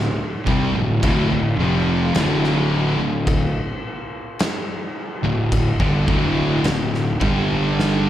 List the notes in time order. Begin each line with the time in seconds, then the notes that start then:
Already playing: D1
0.46 C2 C3 G3, kick
0.74 D1 D2 A2
1.03 D1 D2 A2, kick, crash
1.31 D1 D2 A2
1.59 F1 F2 C3 F3
2.15 D1 D2 A2 D3, snare, crash
2.44 snare
2.99 D1 D2 A2
3.27 kick, crash
4.39 snare, crash
5.23 D1 D2 A2
5.52 kick, crash
5.79 G1 G2 D3, kick
6.08 D1 D2 A2 D3, kick
6.64 D1 D2 A2, snare, crash
6.94 snare
7.21 G1 G2 D3 G3, kick
7.80 snare